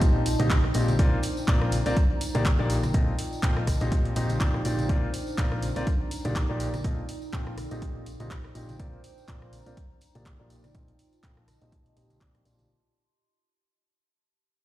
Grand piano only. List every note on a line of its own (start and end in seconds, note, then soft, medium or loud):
0.00 0.23 A#2 medium
0.00 0.23 C4 medium
0.00 0.23 D#4 medium
0.00 0.23 G4 medium
0.00 0.23 D#5 medium
0.40 0.55 A#2 medium
0.40 0.55 C4 medium
0.40 0.55 D#4 medium
0.40 0.55 G4 medium
0.40 0.55 D#5 medium
0.75 0.92 A#2 medium
0.75 0.92 C4 medium
0.75 0.92 D#4 medium
0.75 0.92 G4 medium
0.75 0.92 D#5 medium
0.99 1.17 A#2 medium
0.99 1.17 C4 medium
0.99 1.17 F4 medium
0.99 1.17 A#4 medium
0.99 1.17 D5 loud
1.48 1.74 A#2 medium
1.48 1.74 C4 medium
1.48 1.74 F4 medium
1.48 1.74 A#4 medium
1.48 1.74 D5 loud
1.86 1.95 C4 medium
1.86 1.95 F4 medium
1.86 1.95 A#4 medium
1.86 1.95 D5 loud
2.35 2.50 A#2 medium
2.35 2.50 A#3 medium
2.35 2.50 D#4 medium
2.35 2.50 G4 medium
2.35 2.50 D5 loud
2.59 2.75 A#2 loud
2.59 2.75 A#3 medium
2.59 2.75 D#4 medium
2.59 2.75 G4 medium
2.59 2.75 D5 loud
2.94 3.12 A#2 medium
2.94 3.12 C4 medium
2.94 3.12 F4 medium
2.94 3.12 A4 medium
2.94 3.12 D#5 medium
3.43 3.60 A#2 medium
3.43 3.60 C4 medium
3.43 3.60 F4 medium
3.43 3.60 A4 medium
3.43 3.60 G5 medium
3.81 4.14 A#2 medium
3.81 4.14 C4 medium
3.81 4.14 D#4 medium
3.81 4.14 G4 medium
3.81 4.14 D#5 medium
4.16 4.38 A#2 medium
4.16 4.38 C4 medium
4.16 4.38 D#4 medium
4.16 4.38 G4 medium
4.16 4.38 D#5 medium
4.41 4.58 A#2 medium
4.41 4.58 C4 medium
4.41 4.58 D#4 medium
4.41 4.58 G4 medium
4.41 4.58 D5 medium
4.65 4.86 A#2 medium
4.65 4.86 C4 medium
4.65 4.86 D#4 medium
4.65 4.86 G4 medium
4.65 4.86 D5 medium
4.89 5.07 A#2 medium
4.89 5.07 C4 medium
4.89 5.07 F4 medium
4.89 5.07 A#4 medium
4.89 5.07 D5 loud
5.38 5.65 A#2 medium
5.38 5.65 C4 medium
5.38 5.65 F4 medium
5.38 5.65 A#4 medium
5.38 5.65 D5 medium
5.76 5.86 C4 medium
5.76 5.86 F4 medium
5.76 5.86 A#4 medium
5.76 5.86 D5 loud
6.25 6.40 A#2 medium
6.25 6.40 A#3 medium
6.25 6.40 D#4 medium
6.25 6.40 G4 medium
6.25 6.40 D5 loud
6.49 6.65 A#2 loud
6.49 6.65 A#3 medium
6.49 6.65 D#4 medium
6.49 6.65 G4 medium
6.49 6.65 D5 loud
6.85 7.02 A#2 medium
6.85 7.02 C4 medium
6.85 7.02 F4 medium
6.85 7.02 A4 medium
6.85 7.02 D#5 medium
7.33 7.51 A#2 medium
7.33 7.51 C4 medium
7.33 7.51 F4 medium
7.33 7.51 A4 medium
7.33 7.51 G5 medium
7.71 8.04 A#2 medium
7.71 8.04 C4 medium
7.71 8.04 D#4 medium
7.71 8.04 G4 medium
7.71 8.04 D#5 medium
8.20 8.36 A#2 medium
8.20 8.36 C4 medium
8.20 8.36 D#4 medium
8.20 8.36 G4 medium
8.20 8.36 D#5 medium
8.55 8.73 A#2 medium
8.55 8.73 C4 medium
8.55 8.73 D#4 medium
8.55 8.73 G4 medium
8.55 8.73 D#5 medium
8.80 8.97 A#2 medium
8.80 8.97 C4 medium
8.80 8.97 F4 medium
8.80 8.97 A#4 medium
8.80 8.97 D5 loud
9.28 9.55 A#2 medium
9.28 9.55 C4 medium
9.28 9.55 F4 medium
9.28 9.55 A#4 medium
9.28 9.55 D5 medium
9.66 9.76 C4 medium
9.66 9.76 F4 medium
9.66 9.76 A#4 medium
9.66 9.76 D5 medium
10.15 10.31 A#2 medium
10.15 10.31 A#3 medium
10.15 10.31 D#4 medium
10.15 10.31 G4 medium
10.15 10.31 D5 medium
10.40 10.55 A#2 loud
10.40 10.55 A#3 medium
10.40 10.55 D#4 medium
10.40 10.55 G4 medium
10.40 10.55 D5 loud
10.75 10.92 A#2 medium
10.75 10.92 C4 medium
10.75 10.92 F4 medium
10.75 10.92 A4 medium
10.75 10.92 D#5 medium
11.24 11.41 A#2 medium
11.24 11.41 C4 medium
11.24 11.41 F4 medium
11.24 11.41 A4 medium
11.24 11.41 G5 medium
11.62 11.94 A#2 medium
11.62 11.94 C4 medium
11.62 11.94 D#4 medium
11.62 11.94 G4 medium
11.62 11.94 D#5 medium
11.97 12.18 A#2 medium
11.97 12.19 C4 medium
11.97 12.19 D#4 medium
11.97 12.19 G4 medium
11.97 12.19 D#5 medium
12.21 12.38 A#2 medium
12.21 12.39 D#4 medium
12.21 12.39 D5 loud
12.45 12.67 A#2 medium
12.45 12.67 C4 medium
12.45 12.67 D#4 medium
12.45 12.67 G4 medium
12.45 12.67 D5 medium